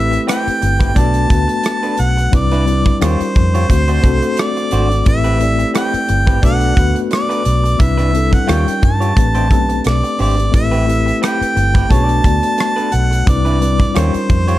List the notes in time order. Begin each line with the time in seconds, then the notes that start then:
Already playing: A1 A3 C4 E4 G4 B4 E5
0.11 muted clean electric guitar stroke, closed hi-hat
0.27 C4 G4 B4 G5, cross-stick, closed hi-hat
0.47 muted fingered electric bass stroke, closed hi-hat
0.61 G1, muted clean electric guitar stroke, closed hi-hat
0.80 C4 G4 B4, kick, closed hi-hat
0.95 B1 A3 B3 D4 F#4 A4 B4 D5 A5, kick, closed hi-hat
1.14 closed hi-hat
1.29 D2 A3 B3 D4 F#4 B4, kick, closed hi-hat
1.48 muted clean electric guitar stroke, closed hi-hat
1.63 muted clean electric guitar stroke, cross-stick, closed hi-hat
1.83 D4 A4 B4, closed hi-hat
1.97 B1 F#5, muted clean electric guitar stroke, closed hi-hat
2.17 muted clean electric guitar stroke, closed hi-hat
2.31 C2 G3 C4 D4 E4 B4, muted clean electric guitar stroke, kick, closed hi-hat
2.35 D5
2.51 D4 E4 B4, cross-stick, closed hi-hat
2.66 G3 C4 D4 E4 B4, muted clean electric guitar stroke, closed hi-hat
2.86 muted clean electric guitar stroke, kick, closed hi-hat
3.00 D#2 G3 C#4 D#4 F4 G4 A#4 C5 C#5, cross-stick, closed hi-hat
3.20 muted fingered electric bass stroke, closed hi-hat
3.35 F2, muted clean electric guitar stroke, kick, closed hi-hat
3.54 F4 G4 C#5, closed hi-hat
3.68 D2 A3 C4 D4 F#4 C5, muted clean electric guitar stroke, kick, closed hi-hat
3.88 D4 F#4 C5, closed hi-hat
4.02 C2 A3 C4 D4 F#4 A4, muted clean electric guitar stroke, kick, closed hi-hat
4.22 muted clean electric guitar stroke, closed hi-hat
4.37 D5, cross-stick, closed hi-hat
4.57 muted clean electric guitar stroke, closed hi-hat
4.71 G#1 D4 F#4 C5, closed hi-hat
4.90 muted clean electric guitar stroke, closed hi-hat
5.05 A1 A3 C4 E4 G4 B4 E5, muted clean electric guitar stroke, kick, closed hi-hat
5.24 C4 G4 B4, closed hi-hat
5.39 A3 C4 E4 G4 D5, muted clean electric guitar stroke, closed hi-hat
5.59 muted clean electric guitar stroke, closed hi-hat
5.74 C4 G4 B4 G5, cross-stick, closed hi-hat
5.94 muted fingered electric bass stroke, closed hi-hat
6.08 G1, muted clean electric guitar stroke, closed hi-hat
6.27 C4 G4 B4, kick, closed hi-hat
6.42 B1 A3 B3 D4 F#4 A4 B4 D5 F#5, kick, closed hi-hat
6.61 closed hi-hat
6.76 D2 A3 B3 D4 F#4 B4, muted clean electric guitar stroke, kick, closed hi-hat
6.95 muted clean electric guitar stroke, closed hi-hat
7.11 D5, muted clean electric guitar stroke, cross-stick, closed hi-hat
7.29 D4 A4 B4, closed hi-hat
7.45 B1, muted clean electric guitar stroke, closed hi-hat
7.64 muted clean electric guitar stroke, closed hi-hat
7.78 C2 G3 C4 D4 E4 B4 E5, muted clean electric guitar stroke, kick, closed hi-hat
7.97 D4 E4 B4, cross-stick, closed hi-hat
8.13 G3 C4 D4 E4 A4, closed hi-hat
8.32 F#5, muted clean electric guitar stroke, kick, closed hi-hat
8.47 D#2 G3 C#4 D#4 F4 G4 A#4 C#5 G5, cross-stick, closed hi-hat
8.68 muted fingered electric bass stroke, closed hi-hat
8.82 G2 A5, muted clean electric guitar stroke, kick, closed hi-hat
9.00 F4 G4 C#5, closed hi-hat
9.16 A1 A3 C4 D4 G4 B4, muted clean electric guitar stroke, kick, closed hi-hat
9.35 D4 G4 C5, closed hi-hat
9.50 B1 A3 C4 D4 G4 B4, kick, closed hi-hat
9.69 muted clean electric guitar stroke, closed hi-hat
9.84 B1 D5, cross-stick, closed hi-hat
10.03 muted clean electric guitar stroke, closed hi-hat
10.19 G#1 D4 G4 C5 D5, open hi-hat
10.38 muted clean electric guitar stroke, closed hi-hat
10.51 A1 A3 C4 E4 G4 B4 E5, muted clean electric guitar stroke, kick, closed hi-hat
10.71 C4 G4 B4, closed hi-hat
10.86 A3 C4 E4 G4 B4, closed hi-hat
11.06 muted clean electric guitar stroke, closed hi-hat
11.22 C4 G4 B4 G5, cross-stick, closed hi-hat
11.41 muted fingered electric bass stroke, closed hi-hat
11.56 G1, muted clean electric guitar stroke, closed hi-hat
11.74 C4 G4 B4, kick, closed hi-hat
11.89 B1 A3 B3 C#4 D4 F#4 G#4 B4 C#5 A5, kick, closed hi-hat
12.03 D4 A4 D5
12.09 closed hi-hat
12.24 D2 A3 B3 D4 F#4 D5, muted clean electric guitar stroke, kick, closed hi-hat
12.43 muted clean electric guitar stroke, closed hi-hat
12.58 muted clean electric guitar stroke, cross-stick, closed hi-hat
12.76 D4 A4 B4, closed hi-hat
12.92 B1 F#5, closed hi-hat
13.11 muted clean electric guitar stroke, closed hi-hat
13.26 C2 G3 C4 D4 E4 B4 D5, muted clean electric guitar stroke, kick, closed hi-hat
13.45 D4 E4 B4, closed hi-hat
13.60 G3 C4 D4 E4 B4, muted clean electric guitar stroke, closed hi-hat
13.79 muted clean electric guitar stroke, kick, closed hi-hat
13.94 D#2 G3 C#4 D#4 F4 G4 A#4 C5 C#5, cross-stick, closed hi-hat
14.14 muted fingered electric bass stroke, closed hi-hat
14.29 F2, muted clean electric guitar stroke, kick, closed hi-hat
14.48 F4 G4 C#5, closed hi-hat